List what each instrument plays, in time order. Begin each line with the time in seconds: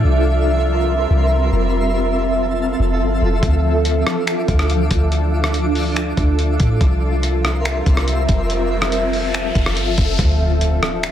Already playing: ambient pad F4 E5, synth texture E5
0.05 808-style bass C2, ambient pad G3 C4 A#4, synth texture A#4 C6
1.10 808-style bass C2
1.53 808-style bass F1
1.74 ambient pad F3 C4 F4 A4, synth texture F4 A5
2.79 808-style bass F1
3.00 808-style bass G1
3.22 808-style bass F1
3.43 808-style bass D2, ambient pad D4, synth texture D6, kick, closed hi-hat
3.85 closed hi-hat
4.07 cross-stick
4.27 finger snap, closed hi-hat
4.48 808-style bass D2, kick, closed hi-hat
4.59 cross-stick
4.70 closed hi-hat
4.91 808-style bass D2, kick, closed hi-hat
5.12 closed hi-hat
5.44 cross-stick
5.54 closed hi-hat
5.75 open hi-hat
5.96 finger snap, closed hi-hat
6.17 808-style bass D2, kick, closed hi-hat
6.39 closed hi-hat
6.60 808-style bass A2, kick, closed hi-hat
6.81 808-style bass C2, ambient pad G3 C4 A#4 E5, synth texture A#4 E5 C6, kick, closed hi-hat, riser
7.23 closed hi-hat
7.45 cross-stick
7.65 finger snap, closed hi-hat
7.86 808-style bass C2, kick, closed hi-hat
7.97 cross-stick
8.08 closed hi-hat
8.29 808-style bass F1, kick, closed hi-hat
8.50 ambient pad F3 A4, synth texture F4 A5, closed hi-hat
8.82 cross-stick
8.92 closed hi-hat
9.13 open hi-hat
9.34 finger snap, closed hi-hat
9.55 808-style bass F1, kick, closed hi-hat
9.66 cross-stick
9.77 808-style bass G1, closed hi-hat
9.98 808-style bass F1, kick, closed hi-hat
10.19 808-style bass D2, ambient pad F3 D4 F4 A4 E5, kick, closed hi-hat, impact
10.61 closed hi-hat
10.83 cross-stick
11.03 finger snap, closed hi-hat